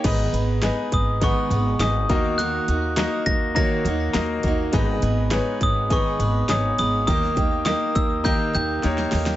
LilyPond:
<<
  \new Staff \with { instrumentName = "Glockenspiel" } { \time 4/4 \key gis \minor \tempo 4 = 102 r4. dis'''8 cis'''4 dis'''4 | fis'''4. ais'''8 ais'''4. r8 | r4. dis'''8 cis'''4 dis'''8 dis'''8 | dis'''4 dis'''8 e'''8 g'''8 g'''4 r8 | }
  \new Staff \with { instrumentName = "Grand piano" } { \time 4/4 \key gis \minor <b dis' gis' b' dis''>4 <b dis' gis' b' dis''>4 <b dis' gis' b' fis''>4 <b dis' gis' b' dis''>8 <ais dis' fis' ais' dis''>8~ | <ais dis' fis' ais' dis''>8. r16 <ais dis' fis' ais' dis''>4 <ais dis' fis' ais' cis''>4 <ais dis' fis' ais' dis''>4 | <b dis' gis' b' dis''>4 <b dis' gis' b' cis''>4 <b dis' gis' b' dis''>4 <b dis' gis' b' cis''>4 | <ais dis' g' ais' dis''>4 <ais dis' g' ais' dis''>4 <ais dis' g' ais' dis''>4 <ais dis' g' ais' cis''>4 | }
  \new Staff \with { instrumentName = "Grand piano" } { \clef bass \time 4/4 \key gis \minor gis,4. r2 dis8~ | dis4 r2. | gis,4. r2 r8 | dis4. r2 r8 | }
  \new Staff \with { instrumentName = "Steel-string acoustic guitar" } { \time 4/4 \key gis \minor <gis, dis gis b gis' b'>8 <gis b gis' b'>8 <gis b gis' b'>4 <gis, dis gis b gis' b'>8 <gis b gis' b'>4 <dis' fis' ais'>8 | <dis ais dis' fis' ais'>8 <dis' fis' ais'>8 <ais dis' fis' ais'>4 <dis ais dis' fis' ais'>8 <dis' fis' ais'>4 <dis' fis' ais'>8 | <gis, dis gis b gis' b'>8 <gis b gis' b'>8 <gis b gis' b'>4 <gis, dis gis b gis' b'>8 <gis b gis' b'>4 <gis b gis' b'>8 | <dis ais dis' g' ais'>8 <dis' g' ais'>8 <ais dis' g' ais'>4 <dis ais dis' g' ais'>8 <dis' g' ais'>4 <dis' g' ais'>8 | }
  \new Staff \with { instrumentName = "Upright bass" } { \clef bass \time 4/4 \key gis \minor gis,,8 gis,,8. r16 gis,,8. r16 gis,,8 gis,,8 dis,8~ | dis,8 dis,8. r16 dis,8. r16 dis,8 dis,8 dis,8 | gis,,8 gis,,8. r16 gis,,8. r16 gis,,8 gis,,8 gis,,8 | dis,8 dis,8. r16 dis,8. r16 dis,8 dis,8 dis,8 | }
  \new DrumStaff \with { instrumentName = "Drums" } \drummode { \time 4/4 <cymc hh bd>8 hh8 <hc hh sn>8 <hh bd>8 <hh bd>8 hh8 <hc hh sn>8 <hh bd>8 | hh8 hh8 <hc hh sn>8 <hh bd>8 <hh bd>8 hh8 <hc hh sn>8 <hh bd>8 | <hh bd>8 hh8 <hc hh sn>8 <hh bd>8 <hh bd>8 hh8 <hc hh sn>8 hh8 | <hh bd>16 sn16 <hh bd>8 <hc hh sn>8 <hh bd>8 <hh bd>8 hh8 <hh sn>16 sn16 <hho sn>16 sn16 | }
>>